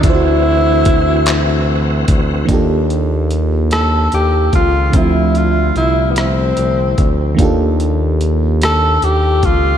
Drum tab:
HH |x-xx-x|xxxxxx|xxxxxx|xxxxxx|
CP |---x--|------|------|------|
SD |------|---r--|---r--|---r--|
BD |o-o--o|o----o|o----o|o----o|